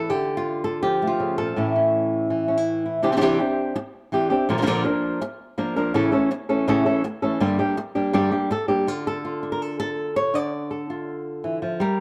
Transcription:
0.10 1.19 D3 medium
0.10 0.64 G4 medium
0.37 1.01 F4 medium
0.64 0.82 A4 medium
0.83 1.54 F3 medium
0.83 1.38 G4 medium
1.02 1.57 A3 soft
1.07 1.56 F4 medium
1.20 1.38 C#3 medium
1.38 1.56 A#2 medium
1.38 3.03 A4 medium
1.56 3.00 A2 medium
1.56 2.29 E3 soft
1.56 1.75 C#4 soft
1.56 2.48 E4 soft
1.76 2.47 C#4 soft
2.30 3.02 E3 soft
2.48 2.57 C#4 soft
2.58 2.85 E4 soft
2.86 3.01 E4 soft
3.03 3.20 C3 medium
3.03 3.11 E3 medium
3.03 3.11 C4 medium
3.03 3.12 D4 medium
3.03 3.12 G4 medium
3.12 3.15 E3 soft
3.12 3.16 C4 medium
3.12 3.16 D4 medium
3.12 3.17 G4 medium
3.17 3.20 E3 medium
3.17 3.21 C4 medium
3.17 3.21 D4 medium
3.17 3.21 G4 medium
3.21 3.39 C3 medium
3.21 3.39 E3 medium
3.21 3.39 C4 medium
3.21 3.39 D4 medium
3.21 3.38 G4 medium
3.39 3.75 C4 soft
3.39 3.75 D4 soft
3.39 3.75 G4 soft
3.76 muted nylon-string guitar stroke medium
4.12 4.30 E3 soft
4.12 4.30 C4 medium
4.12 4.30 D4 medium
4.12 4.29 G4 medium
4.30 4.48 C4 soft
4.30 4.48 D4 soft
4.30 4.48 G4 medium
4.49 4.65 A#2 medium
4.49 4.57 D3 medium
4.49 4.57 F3 medium
4.49 4.57 A#3 medium
4.49 4.57 D4 medium
4.49 4.58 A#4 medium
4.58 4.61 D3 medium
4.58 4.62 F3 medium
4.58 4.61 A#3 soft
4.58 4.62 D4 medium
4.58 4.62 A#4 medium
4.62 4.66 D3 medium
4.62 4.66 F3 medium
4.62 4.66 A#3 medium
4.62 4.67 D4 medium
4.62 4.67 A#4 medium
4.67 4.84 A#2 medium
4.67 4.85 D3 medium
4.67 4.85 F3 medium
4.67 4.85 A#3 medium
4.67 4.84 D4 medium
4.67 4.83 A#4 loud
4.85 5.21 F3 soft
4.85 5.21 A#3 soft
4.85 5.21 D4 soft
4.85 5.21 A#4 soft
5.21 muted nylon-string guitar stroke medium
5.58 5.75 F3 soft
5.58 5.76 A#3 medium
5.58 5.76 D4 medium
5.58 5.75 A#4 medium
5.76 5.94 F3 soft
5.76 5.95 A#3 soft
5.76 5.94 D4 medium
5.76 5.94 A#4 medium
5.94 6.12 A2 medium
5.94 6.12 C#3 medium
5.94 6.12 E3 medium
5.94 6.12 A3 medium
5.94 6.12 C#4 medium
5.94 6.11 A4 medium
6.12 6.30 E3 soft
6.12 6.30 A3 soft
6.12 6.31 C#4 medium
6.12 6.30 A4 medium
6.31 muted nylon-string guitar stroke medium
6.49 6.67 E3 soft
6.49 6.67 A3 soft
6.49 6.67 C#4 medium
6.49 6.67 A4 medium
6.68 6.85 A2 medium
6.68 6.85 C#3 medium
6.68 6.85 E3 medium
6.68 6.86 A3 medium
6.68 6.85 C#4 medium
6.68 6.85 A4 medium
6.86 7.03 E3 soft
6.86 7.04 A3 soft
6.86 7.03 C#4 soft
6.86 7.04 A4 medium
7.04 muted nylon-string guitar stroke medium
7.22 7.40 E3 soft
7.22 7.40 A3 soft
7.22 7.40 C#4 soft
7.22 7.40 A4 soft
7.40 7.58 G2 medium
7.40 7.58 D3 medium
7.40 7.58 G3 medium
7.40 7.59 A#3 medium
7.40 7.58 D4 medium
7.40 7.58 G4 medium
7.59 7.77 G3 soft
7.59 7.76 A#3 soft
7.59 7.77 D4 soft
7.59 7.77 G4 medium
7.77 muted nylon-string guitar stroke medium
7.95 8.13 G3 soft
7.95 8.13 A#3 soft
7.95 8.13 D4 soft
7.95 8.13 G4 soft
8.13 8.31 G2 medium
8.13 8.31 D3 medium
8.13 8.31 G3 medium
8.13 8.31 A#3 medium
8.13 8.31 D4 medium
8.13 8.30 G4 medium
8.31 8.50 G3 soft
8.31 8.50 A#3 soft
8.31 8.50 D4 soft
8.31 8.49 G4 medium
8.51 8.68 A4 medium
8.51 muted nylon-string guitar stroke medium
8.68 8.87 G3 soft
8.68 8.86 A#3 soft
8.68 8.88 D4 soft
8.68 8.86 G4 medium
8.87 10.32 D3 medium
8.87 9.24 F4 medium
9.07 9.52 A4 medium
9.25 10.32 F4 soft
9.43 10.90 D4 soft
9.52 9.62 A#4 medium
9.62 9.78 A4 medium
9.80 10.16 A4 medium
10.16 10.35 C#5 medium
10.34 11.78 D3 medium
10.34 11.08 D5 medium
10.71 11.78 A4 soft
10.90 11.79 F4 soft
11.44 11.62 E3 medium
11.62 11.80 F3 medium
11.80 12.00 G3 medium
11.80 12.00 A#4 medium

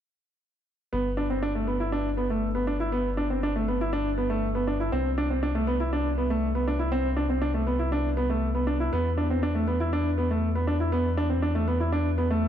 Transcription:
0.93 4.91 G1 medium
0.93 1.08 B3 medium
1.17 1.25 D4 medium
1.30 1.38 C4 medium
1.43 1.51 D4 medium
1.55 1.63 A3 medium
1.67 1.76 B3 medium
1.80 1.88 E4 medium
1.92 2.08 D4 medium
2.17 2.25 B3 medium
2.30 2.46 A3 medium
2.55 2.63 B3 medium
2.67 2.75 D4 medium
2.80 2.88 E4 medium
2.92 3.08 B3 medium
3.17 3.25 D4 medium
3.30 3.38 C4 medium
3.43 3.51 D4 medium
3.56 3.64 A3 medium
3.68 3.76 B3 medium
3.81 3.89 E4 medium
3.93 4.09 D4 medium
4.18 4.26 B3 medium
4.30 4.46 A3 medium
4.55 4.63 B3 medium
4.68 4.76 D4 medium
4.80 4.88 E4 medium
4.92 8.90 C2 medium
4.92 5.08 C4 medium
5.18 5.26 D4 medium
5.30 5.38 C4 medium
5.43 5.51 D4 medium
5.55 5.63 A3 medium
5.67 5.75 B3 medium
5.80 5.88 E4 medium
5.93 6.08 D4 medium
6.18 6.26 B3 medium
6.30 6.46 A3 medium
6.55 6.63 B3 medium
6.68 6.76 D4 medium
6.79 6.88 E4 medium
6.92 7.08 C4 medium
7.17 7.25 D4 medium
7.30 7.38 C4 medium
7.42 7.50 D4 medium
7.54 7.63 A3 medium
7.67 7.75 B3 medium
7.79 7.88 E4 medium
7.92 8.08 D4 medium
8.17 8.25 B3 medium
8.30 8.46 A3 medium
8.55 8.63 B3 medium
8.67 8.75 D4 medium
8.80 8.88 E4 medium
8.93 12.48 E2 medium
8.93 9.08 B3 medium
9.18 9.26 D4 medium
9.30 9.38 C4 medium
9.43 9.51 D4 medium
9.55 9.63 A3 medium
9.68 9.76 B3 medium
9.80 9.88 E4 medium
9.93 10.09 D4 medium
10.18 10.26 B3 medium
10.31 10.46 A3 medium
10.55 10.63 B3 medium
10.67 10.76 D4 medium
10.80 10.88 E4 medium
10.92 11.08 B3 medium
11.17 11.26 D4 medium
11.30 11.38 C4 medium
11.42 11.50 D4 medium
11.55 11.63 A3 medium
11.68 11.76 B3 medium
11.80 11.88 E4 medium
11.92 12.08 D4 medium
12.18 12.26 B3 medium
12.31 12.46 A3 medium

